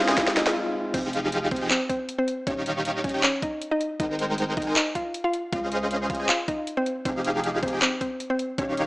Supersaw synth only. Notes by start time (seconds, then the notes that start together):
0.08 C#4 G#4 C5 D#5 G#5
0.94 F3 D#4 G4 G#4 F5
1.61 F3 D#4 G4 G#4 G5
2.47 D#3 D#4 G4 C#5 F5
3.14 D#3 D#4 G4 C#5 G5
4.00 G#3 D#4 A#4 C5 G5
4.67 G#3 D#4 A#4 C5 G#5
5.53 C#4 G#4 C5 D#5 F5
6.20 C#4 G#4 C5 D#5 G#5
7.05 F3 D#4 G4 G#4 F5
7.73 F3 D#4 G4 G#4 G5
8.58 D#3 D#4 G4 C#5 F5